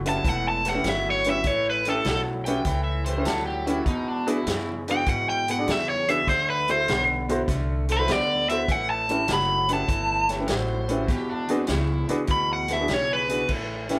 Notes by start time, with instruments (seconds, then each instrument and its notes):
Already playing: upright bass F#1
0.06 clean electric guitar A2 F#3, grand piano C#4 E4 G4 B4, overdriven electric guitar A5, closed hi-hat
0.24 upright bass E1, clean electric guitar A2 E3, kick, closed hi-hat
0.29 overdriven electric guitar F#5
0.48 overdriven electric guitar A5
0.65 clean electric guitar A2 E3, grand piano G4 B4, snare, closed hi-hat
0.69 overdriven electric guitar F#5
0.74 grand piano C#4 E4 G4 B4
0.84 upright bass G1, clean electric guitar A2 F#3, snare, closed hi-hat
0.89 overdriven electric guitar E5
1.10 overdriven electric guitar C#5
1.24 clean electric guitar A2 F#3, grand piano C#4 E4 G4 B4, closed hi-hat
1.30 overdriven electric guitar E5
1.44 upright bass A1, clean electric guitar A2 E3, overdriven electric guitar C#5, kick, closed hi-hat
1.70 overdriven electric guitar B4
1.85 clean electric guitar A2 E3, grand piano C#4 E4 G4 B4, closed hi-hat
1.90 overdriven electric guitar A4
2.04 upright bass B1, clean electric guitar A2 F#3, snare, closed hi-hat
2.45 clean electric guitar A2 F#3, grand piano C#4 E4 G4 B4, electric slide guitar G5, closed hi-hat
2.65 upright bass C#2, clean electric guitar A2 E3, kick, snare, closed hi-hat
2.84 electric slide guitar E5
3.05 clean electric guitar A2 E3, grand piano G4 B4, electric slide guitar C5, closed hi-hat
3.17 grand piano C#4 E4 G4 B4
3.25 upright bass D2, clean electric guitar A2 F#3, electric slide guitar A4, snare, closed hi-hat
3.46 electric slide guitar G4
3.66 clean electric guitar A2 F#3, grand piano C#4 E4 G4 B4, electric slide guitar E4, closed hi-hat
3.86 upright bass E2, clean electric guitar E2 B2, electric slide guitar D#4, kick, closed hi-hat
4.08 electric slide guitar D4
4.27 clean electric guitar E2 B2, grand piano D4 F#4 G#4 B4, electric slide guitar E4, closed hi-hat
4.47 clean electric guitar E2 C#3, upright bass F#2, snare, closed hi-hat
4.88 clean electric guitar E2 C#3, grand piano D4 F#4 G#4 B4, overdriven electric guitar G5, closed hi-hat
5.06 clean electric guitar E2 B2, upright bass G#2, overdriven electric guitar F#5, kick, closed hi-hat
5.29 overdriven electric guitar G5
5.48 clean electric guitar E2 B2, grand piano G#4 B4, overdriven electric guitar F#5, closed hi-hat
5.58 grand piano D4 F#4 G#4 D5
5.67 clean electric guitar E2 C#3, upright bass E2, snare, closed hi-hat
5.71 overdriven electric guitar E5
5.89 overdriven electric guitar C#5
6.08 clean electric guitar E2 C#3, grand piano D4 F#4 G#4 B4, overdriven electric guitar E5, closed hi-hat
6.27 upright bass D2, clean electric guitar D3 A3, overdriven electric guitar C5, kick, snare, closed hi-hat
6.50 overdriven electric guitar B4
6.68 clean electric guitar D3 A3, grand piano E4 F#4 A4 C5, overdriven electric guitar C5, closed hi-hat
6.88 upright bass B1, clean electric guitar D3 B3, snare, closed hi-hat
7.29 clean electric guitar D3 B3, grand piano E4 F#4 A4 C5, closed hi-hat
7.48 upright bass C2, clean electric guitar D3 A3, kick, snare, closed hi-hat
7.89 clean electric guitar D3 A3, grand piano A4 C5, overdriven electric guitar B4, closed hi-hat
7.99 grand piano E4 F#4 A4 C5
8.08 upright bass D2, clean electric guitar D3 B3, overdriven electric guitar D5, snare, closed hi-hat
8.48 clean electric guitar D3 B3, grand piano E4 F#4 A4 C5, overdriven electric guitar E5, closed hi-hat
8.68 upright bass A1, clean electric guitar A2 E3, overdriven electric guitar F#5, kick, closed hi-hat
8.90 overdriven electric guitar A5
9.09 clean electric guitar A2 E3, grand piano C#4 E4 G4 B4, closed hi-hat
9.27 upright bass F#1, clean electric guitar A2 F#3, snare, closed hi-hat
9.33 overdriven electric guitar B5
9.69 clean electric guitar A2 F#3, grand piano C#4 E4 G4 B4, closed hi-hat
9.73 overdriven electric guitar A5
9.88 upright bass G1, clean electric guitar A2 E3, kick, closed hi-hat
10.29 clean electric guitar A2 E3, grand piano G4 C#5, snare, closed hi-hat
10.39 grand piano C#4 E4 G4 B4
10.47 upright bass A1, clean electric guitar A2 F#3, electric slide guitar C5, snare, closed hi-hat
10.88 clean electric guitar A2 F#3, grand piano C#4 E4 G4 B4, closed hi-hat
11.06 clean electric guitar E2 B2, upright bass E2, electric slide guitar G4, kick, snare, closed hi-hat
11.30 electric slide guitar D4
11.48 clean electric guitar E2 B2, electric slide guitar C4, grand piano D4 F#4 G#4 B4, closed hi-hat
11.67 upright bass C#2, clean electric guitar E2 C#3, snare, closed hi-hat
11.71 electric slide guitar E4
12.08 clean electric guitar E2 C#3, grand piano D4 F#4 G#4 B4, closed hi-hat
12.27 upright bass D2, clean electric guitar E2 B2, overdriven electric guitar B5, kick, closed hi-hat
12.53 overdriven electric guitar F#5
12.68 clean electric guitar E2 B2, grand piano G#4 B4, snare, closed hi-hat
12.73 overdriven electric guitar E5
12.80 grand piano D4 F#4 G#4 B4
12.88 upright bass B1, clean electric guitar E2 C#3, snare, closed hi-hat
12.93 overdriven electric guitar C#5
13.13 overdriven electric guitar B4
13.28 clean electric guitar E2 C#3, grand piano D4 F#4 G#4 B4, closed hi-hat
13.48 upright bass A1, clean electric guitar A2 E3, kick, crash
13.89 clean electric guitar A2 E3, grand piano C#4 E4 G4 B4, snare, closed hi-hat